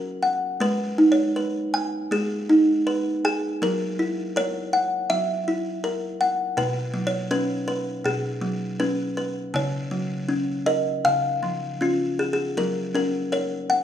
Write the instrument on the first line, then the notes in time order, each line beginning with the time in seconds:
kalimba
Already playing: F#3 C#4 F#4 A#4 F#5
0.23 F#5
0.60 G#3 B4
0.98 D#4
1.12 C#5
1.36 B4
1.74 G#5
2.11 G#3 G#4
2.49 D#4
2.87 B4
3.25 G#4 G#5
3.62 F#3 A#4
3.99 E4
4.36 A#4 C#5
4.73 F#5
5.10 F#3 E5
5.48 E4
5.84 A#4
6.21 F#5
6.57 B2 B4
6.94 F#3
7.07 C#5
7.31 C#4 B4
7.68 B4
8.04 B2 G#4
8.41 F#3
8.80 C#4 B4
9.17 B4
9.54 C#3 C#5
9.91 F#3
10.29 C#4
10.66 A#4 D#5
11.05 C#3 F5
11.43 F3
11.81 C#4 F4
12.19 G#4
12.33 G#4
12.57 F#3 A#4
12.95 C#4 A#4
13.32 A#4 C#5
13.70 F#5